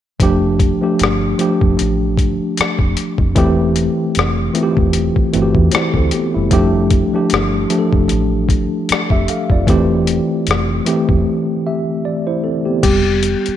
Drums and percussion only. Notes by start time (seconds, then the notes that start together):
0.20 kick, closed hi-hat
0.60 kick, closed hi-hat
0.99 closed hi-hat
1.04 cross-stick
1.39 closed hi-hat
1.61 kick
1.79 closed hi-hat
2.17 kick, closed hi-hat
2.57 cross-stick, closed hi-hat
2.79 kick
2.97 closed hi-hat
3.18 kick
3.36 kick, closed hi-hat
3.76 closed hi-hat
4.15 closed hi-hat
4.19 cross-stick
4.55 closed hi-hat
4.77 kick
4.93 closed hi-hat
5.16 kick
5.34 closed hi-hat
5.55 kick
5.71 cross-stick, closed hi-hat
5.94 kick
6.11 closed hi-hat
6.51 kick, closed hi-hat
6.90 kick, closed hi-hat
7.30 closed hi-hat
7.34 cross-stick
7.70 closed hi-hat
7.93 kick
8.09 closed hi-hat
8.49 kick, closed hi-hat
8.89 cross-stick, closed hi-hat
9.10 kick
9.28 closed hi-hat
9.50 kick
9.67 kick, closed hi-hat
10.07 closed hi-hat
10.47 closed hi-hat
10.51 cross-stick
10.86 closed hi-hat
11.09 kick
12.83 kick, closed hi-hat, crash
13.23 closed hi-hat
13.46 closed hi-hat